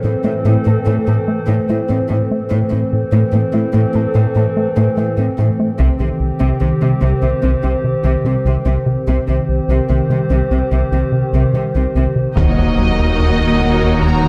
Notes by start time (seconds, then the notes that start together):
Already playing: E3 C4 A4 C5
0.04 A2 C4
0.24 A2 A3 E4
0.45 A2 A3
0.66 A2 A4
0.86 A2 A3
1.07 A2 A4
1.28 A3
1.48 A2 A3
1.69 A2 A3 E4
1.90 A2 C4
2.09 A2 A3
2.31 A3
2.50 A2 E3 A3 C4 A4 C5
2.71 A2 C4
2.93 A2
3.12 A2 A3
3.33 A2 C4
3.53 A2 A3 E4
3.74 A2 A3
3.95 A2 A4
4.15 A2 A3
4.36 A2 A4
4.57 A3
4.77 A2 A3
4.97 A2 A3 E4
5.18 A2 C4
5.38 A2 A3
5.60 A3
5.79 C2 C3 D#3 C4 G4 C5, taiko
5.99 C2 C3 D#3
6.20 C2
6.40 C2 C3
6.61 C2 C3 D#3
6.82 C3 G3
7.02 C2 C3
7.22 C2 C3 C4
7.43 C2 C3
7.64 C2 C3 C4
7.84 C3
8.04 C2 C3
8.25 C3 G3
8.45 C2 C3 D#3
8.65 C2 C3
8.86 C3
9.07 C2 C3 D#3 C4 G4 C5
9.28 C2 C3 D#3
9.49 C2
9.68 C2 C3
9.89 C2 C3 D#3
10.10 C3 G3
10.30 C2 C3
10.51 C2 C3 C4
10.72 C2 C3
10.92 C2 C3 C4
11.12 C3
11.33 C2 C3
11.54 C3 G3
11.75 C2 C3 D#3
11.95 C2 C3
12.16 C3
12.36 D#1 D#2 D#3 F#3 D#4 F#4 A#4 D#5, taiko, impact
12.59 D#2
12.78 D#2 F#3
12.99 D#2 D#4
13.19 D#2 D#3
13.39 D#2 D#4
13.60 D#3, taiko
13.81 D#2 D#4
14.01 D#2 D#3 A#5
14.22 D#3 A#3